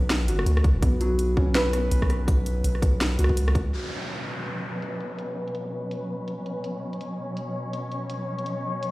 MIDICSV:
0, 0, Header, 1, 6, 480
1, 0, Start_track
1, 0, Tempo, 363636
1, 1086, Time_signature, 4, 2, 24, 8
1, 11764, End_track
2, 0, Start_track
2, 0, Title_t, "Felt piano"
2, 0, Program_c, 0, 0
2, 0, Control_c, 0, 64, 127
2, 0, Note_on_c, 0, 54, 111
2, 0, Note_on_c, 0, 59, 77
2, 0, Note_on_c, 0, 61, 80
2, 0, Note_on_c, 0, 71, 102
2, 369, Note_on_c, 0, 66, 79
2, 598, Note_off_c, 0, 66, 0
2, 1089, Note_off_c, 0, 59, 0
2, 1089, Note_on_c, 0, 59, 85
2, 1318, Note_off_c, 0, 59, 0
2, 1331, Note_off_c, 0, 54, 0
2, 1331, Note_on_c, 0, 54, 107
2, 1559, Note_off_c, 0, 54, 0
2, 1809, Note_off_c, 0, 61, 0
2, 1809, Note_on_c, 0, 61, 78
2, 2028, Note_off_c, 0, 61, 0
2, 2046, Note_off_c, 0, 71, 0
2, 2046, Note_on_c, 0, 71, 108
2, 2266, Note_off_c, 0, 71, 0
2, 2285, Note_on_c, 0, 59, 77
2, 3226, Note_off_c, 0, 59, 0
2, 4202, Note_on_c, 0, 66, 81
2, 4435, Note_off_c, 0, 66, 0
2, 4947, Control_c, 0, 64, 0
2, 5186, Control_c, 0, 64, 127
2, 11764, End_track
3, 0, Start_track
3, 0, Title_t, "String section"
3, 0, Program_c, 1, 48
3, 4930, Note_on_c, 1, 47, 79
3, 5123, Note_on_c, 1, 54, 73
3, 5162, Note_on_c, 1, 61, 67
3, 5411, Note_on_c, 1, 71, 70
3, 9250, Note_on_c, 1, 73, 71
3, 9280, Note_off_c, 1, 71, 0
3, 11764, Note_off_c, 1, 47, 0
3, 11764, Note_off_c, 1, 54, 0
3, 11764, Note_off_c, 1, 61, 0
3, 11764, Note_off_c, 1, 73, 0
3, 11764, End_track
4, 0, Start_track
4, 0, Title_t, "808-style bass"
4, 0, Program_c, 2, 38
4, 0, Note_on_c, 2, 35, 100
4, 591, Note_off_c, 2, 35, 0
4, 609, Note_on_c, 2, 38, 101
4, 1072, Note_off_c, 2, 38, 0
4, 1086, Note_on_c, 2, 35, 105
4, 2511, Note_off_c, 2, 35, 0
4, 2530, Note_on_c, 2, 35, 102
4, 3472, Note_off_c, 2, 35, 0
4, 3485, Note_on_c, 2, 35, 102
4, 4190, Note_off_c, 2, 35, 0
4, 4210, Note_on_c, 2, 37, 98
4, 4913, Note_off_c, 2, 37, 0
4, 11764, End_track
5, 0, Start_track
5, 0, Title_t, "Downlifter"
5, 0, Program_c, 3, 103
5, 4927, Note_on_c, 3, 60, 71
5, 8767, Note_off_c, 3, 60, 0
5, 11764, End_track
6, 0, Start_track
6, 0, Title_t, "Drums"
6, 133, Note_on_c, 9, 37, 36
6, 133, Note_on_c, 9, 38, 113
6, 133, Note_on_c, 9, 42, 57
6, 265, Note_off_c, 9, 37, 0
6, 265, Note_off_c, 9, 38, 0
6, 265, Note_off_c, 9, 42, 0
6, 372, Note_on_c, 9, 42, 69
6, 504, Note_off_c, 9, 42, 0
6, 513, Note_on_c, 9, 37, 83
6, 612, Note_on_c, 9, 42, 74
6, 645, Note_off_c, 9, 37, 0
6, 744, Note_off_c, 9, 42, 0
6, 752, Note_on_c, 9, 37, 84
6, 848, Note_on_c, 9, 36, 105
6, 850, Note_on_c, 9, 42, 37
6, 884, Note_off_c, 9, 37, 0
6, 980, Note_off_c, 9, 36, 0
6, 982, Note_off_c, 9, 42, 0
6, 1088, Note_on_c, 9, 36, 126
6, 1089, Note_on_c, 9, 42, 84
6, 1220, Note_off_c, 9, 36, 0
6, 1221, Note_off_c, 9, 42, 0
6, 1330, Note_on_c, 9, 42, 65
6, 1462, Note_off_c, 9, 42, 0
6, 1568, Note_on_c, 9, 42, 79
6, 1700, Note_off_c, 9, 42, 0
6, 1807, Note_on_c, 9, 36, 110
6, 1939, Note_off_c, 9, 36, 0
6, 2047, Note_on_c, 9, 38, 108
6, 2047, Note_on_c, 9, 42, 59
6, 2179, Note_off_c, 9, 38, 0
6, 2179, Note_off_c, 9, 42, 0
6, 2288, Note_on_c, 9, 37, 55
6, 2288, Note_on_c, 9, 42, 65
6, 2420, Note_off_c, 9, 37, 0
6, 2420, Note_off_c, 9, 42, 0
6, 2527, Note_on_c, 9, 42, 84
6, 2659, Note_off_c, 9, 42, 0
6, 2668, Note_on_c, 9, 36, 61
6, 2670, Note_on_c, 9, 37, 88
6, 2770, Note_off_c, 9, 37, 0
6, 2770, Note_on_c, 9, 37, 57
6, 2770, Note_on_c, 9, 42, 39
6, 2800, Note_off_c, 9, 36, 0
6, 2902, Note_off_c, 9, 37, 0
6, 2902, Note_off_c, 9, 42, 0
6, 3007, Note_on_c, 9, 36, 120
6, 3010, Note_on_c, 9, 42, 83
6, 3139, Note_off_c, 9, 36, 0
6, 3142, Note_off_c, 9, 42, 0
6, 3250, Note_on_c, 9, 42, 68
6, 3382, Note_off_c, 9, 42, 0
6, 3489, Note_on_c, 9, 42, 83
6, 3621, Note_off_c, 9, 42, 0
6, 3629, Note_on_c, 9, 37, 40
6, 3727, Note_on_c, 9, 36, 107
6, 3731, Note_on_c, 9, 42, 84
6, 3761, Note_off_c, 9, 37, 0
6, 3859, Note_off_c, 9, 36, 0
6, 3863, Note_off_c, 9, 42, 0
6, 3972, Note_on_c, 9, 37, 35
6, 3972, Note_on_c, 9, 38, 104
6, 3972, Note_on_c, 9, 42, 59
6, 4104, Note_off_c, 9, 37, 0
6, 4104, Note_off_c, 9, 38, 0
6, 4104, Note_off_c, 9, 42, 0
6, 4209, Note_on_c, 9, 42, 71
6, 4280, Note_on_c, 9, 37, 86
6, 4341, Note_off_c, 9, 42, 0
6, 4347, Note_on_c, 9, 36, 60
6, 4412, Note_off_c, 9, 37, 0
6, 4449, Note_on_c, 9, 42, 81
6, 4479, Note_off_c, 9, 36, 0
6, 4581, Note_off_c, 9, 42, 0
6, 4591, Note_on_c, 9, 37, 89
6, 4687, Note_on_c, 9, 36, 102
6, 4691, Note_on_c, 9, 42, 40
6, 4723, Note_off_c, 9, 37, 0
6, 4819, Note_off_c, 9, 36, 0
6, 4823, Note_off_c, 9, 42, 0
6, 4926, Note_on_c, 9, 42, 80
6, 5058, Note_off_c, 9, 42, 0
6, 5310, Note_on_c, 9, 42, 36
6, 5406, Note_off_c, 9, 42, 0
6, 5406, Note_on_c, 9, 42, 68
6, 5538, Note_off_c, 9, 42, 0
6, 5887, Note_on_c, 9, 42, 71
6, 6019, Note_off_c, 9, 42, 0
6, 6367, Note_on_c, 9, 42, 67
6, 6499, Note_off_c, 9, 42, 0
6, 6605, Note_on_c, 9, 42, 35
6, 6737, Note_off_c, 9, 42, 0
6, 6844, Note_on_c, 9, 42, 80
6, 6976, Note_off_c, 9, 42, 0
6, 7228, Note_on_c, 9, 42, 36
6, 7322, Note_off_c, 9, 42, 0
6, 7322, Note_on_c, 9, 42, 66
6, 7454, Note_off_c, 9, 42, 0
6, 7804, Note_on_c, 9, 42, 78
6, 7936, Note_off_c, 9, 42, 0
6, 8286, Note_on_c, 9, 42, 66
6, 8418, Note_off_c, 9, 42, 0
6, 8526, Note_on_c, 9, 42, 38
6, 8658, Note_off_c, 9, 42, 0
6, 8765, Note_on_c, 9, 42, 79
6, 8897, Note_off_c, 9, 42, 0
6, 9149, Note_on_c, 9, 42, 36
6, 9250, Note_off_c, 9, 42, 0
6, 9250, Note_on_c, 9, 42, 61
6, 9382, Note_off_c, 9, 42, 0
6, 9726, Note_on_c, 9, 42, 73
6, 9858, Note_off_c, 9, 42, 0
6, 10208, Note_on_c, 9, 42, 64
6, 10340, Note_off_c, 9, 42, 0
6, 10449, Note_on_c, 9, 42, 38
6, 10581, Note_off_c, 9, 42, 0
6, 10687, Note_on_c, 9, 42, 74
6, 10819, Note_off_c, 9, 42, 0
6, 11068, Note_on_c, 9, 42, 36
6, 11168, Note_off_c, 9, 42, 0
6, 11168, Note_on_c, 9, 42, 60
6, 11300, Note_off_c, 9, 42, 0
6, 11651, Note_on_c, 9, 42, 72
6, 11764, Note_off_c, 9, 42, 0
6, 11764, End_track
0, 0, End_of_file